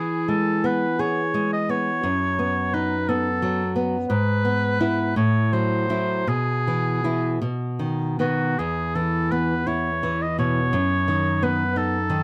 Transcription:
0.00 2.00 E3 soft
0.00 0.31 G#4 soft
0.28 0.85 G#3 soft
0.28 0.67 A4 soft
0.64 1.20 B3 soft
0.64 1.02 B4 soft
0.99 1.55 G#4 soft
0.99 1.52 C#5 soft
1.34 1.90 G#3 soft
1.53 1.72 D#5 soft
1.69 2.04 B3 soft
1.69 2.76 C#5 medium
2.03 4.05 F#2 soft
2.39 2.94 B3 soft
2.74 3.28 D#4 soft
2.74 3.10 B4 medium
3.08 3.62 B3 soft
3.08 3.75 A4 soft
3.42 3.96 F#3 soft
3.76 4.09 B3 soft
4.09 5.13 G#2 soft
4.09 5.12 B4 medium
4.45 4.79 B3 soft
4.80 5.13 B3 soft
4.80 5.13 E4 soft
5.16 6.25 A2 soft
5.16 5.54 C#5 medium
5.52 5.88 F#3 soft
5.52 6.30 C5 medium
5.90 6.24 F#3 soft
5.90 6.25 E4 soft
6.27 7.38 B2 soft
6.27 7.42 G#4 soft
6.67 7.03 E3 soft
7.04 7.38 E3 soft
7.04 7.38 E4 soft
7.42 8.55 B2 soft
7.79 8.18 D#3 soft
8.19 8.54 D#3 soft
8.19 8.55 B3 soft
8.19 8.60 F#4 soft
8.58 10.70 E2 soft
8.58 8.97 G#4 soft
8.95 9.53 E3 soft
8.95 9.32 A4 soft
9.31 9.89 B3 soft
9.31 9.69 B4 soft
9.67 10.24 E4 soft
9.67 10.23 C#5 soft
10.03 10.60 E3 soft
10.22 10.39 D#5 soft
10.39 10.74 B2 soft
10.39 11.45 C#5 medium
10.73 12.23 F#2 soft
11.08 11.63 D#3 soft
11.43 11.96 B3 soft
11.43 11.78 B4 medium
11.76 12.23 D#4 soft
11.76 12.23 A4 medium
12.10 12.23 D#3 soft

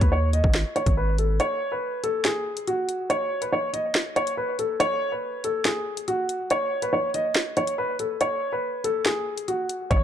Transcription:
0.01 0.42 D#2 loud
0.01 0.09 B4 medium
0.01 kick medium
0.01 closed hi-hat medium
0.12 0.28 C#5 medium
0.33 0.73 D#5 medium
0.33 closed hi-hat medium
0.44 0.64 G#1 loud
0.44 kick loud
0.54 snare loud
0.76 0.92 C#5 medium
0.76 closed hi-hat medium
0.86 1.40 G#1 loud
0.86 kick medium
0.86 closed hi-hat medium
0.97 1.13 B4 medium
1.18 1.35 A4 medium
1.18 closed hi-hat medium
1.40 1.70 C#5 medium
1.40 closed hi-hat medium
1.72 2.02 B4 medium
2.04 2.20 A4 medium
2.04 closed hi-hat medium
2.25 2.65 G#4 medium
2.25 snare loud
2.25 closed hi-hat medium
2.57 closed hi-hat medium
2.67 3.07 F#4 medium
2.67 closed hi-hat medium
2.89 closed hi-hat medium
3.10 3.40 C#5 medium
3.10 closed hi-hat medium
3.42 3.50 B4 medium
3.42 closed hi-hat medium
3.53 3.69 C#5 medium
3.73 4.14 D#5 medium
3.73 closed hi-hat medium
3.95 snare loud
4.16 4.32 C#5 medium
4.16 closed hi-hat medium
4.27 closed hi-hat medium
4.37 4.53 B4 medium
4.59 4.75 A4 medium
4.59 closed hi-hat medium
4.80 5.10 C#5 loud
4.80 closed hi-hat medium
5.12 5.42 B4 medium
5.44 5.60 A4 medium
5.44 closed hi-hat medium
5.65 6.05 G#4 medium
5.65 snare loud
5.65 closed hi-hat medium
5.97 closed hi-hat medium
6.08 6.48 F#4 medium
6.08 closed hi-hat medium
6.29 closed hi-hat medium
6.50 6.81 C#5 loud
6.50 closed hi-hat medium
6.82 6.90 B4 medium
6.82 closed hi-hat medium
6.93 7.09 C#5 medium
7.14 7.54 D#5 medium
7.14 closed hi-hat medium
7.35 snare loud
7.57 7.73 C#5 medium
7.57 closed hi-hat medium
7.67 closed hi-hat medium
7.78 7.94 B4 medium
7.99 8.15 A4 medium
7.99 closed hi-hat medium
8.21 8.51 C#5 medium
8.21 closed hi-hat medium
8.52 8.82 B4 medium
8.84 9.00 A4 medium
8.84 closed hi-hat medium
9.06 9.46 G#4 medium
9.06 snare loud
9.06 closed hi-hat medium
9.38 closed hi-hat medium
9.48 9.88 F#4 medium
9.48 closed hi-hat medium
9.69 closed hi-hat medium
9.91 10.04 G#1 loud
9.91 10.04 C#5 medium
9.91 kick loud
9.91 closed hi-hat medium

